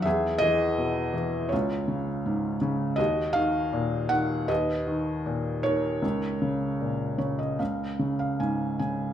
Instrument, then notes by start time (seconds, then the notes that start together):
felt piano
0.02 E2 G#4 E5
0.38 E3 G#4 D#5
0.78 B2
1.14 E3
1.49 F4 C#5
1.53 C#2
1.88 C#3
2.26 G#2
2.61 C#3
2.96 D#2 F#4 D#5
3.33 D#3 F5
3.73 A#2
4.09 D#3 F#5
4.48 D#2 B4 D#5
4.87 D#3
5.26 A#2
5.63 D#3 A#4 C#5
6.02 C#2
6.42 C#3
6.81 A#2
7.18 C#3 C#5
7.39 D#5
7.59 C#2 F5
7.99 C#3
8.19 F5
8.40 G#2 G#5
8.79 C#3 G#5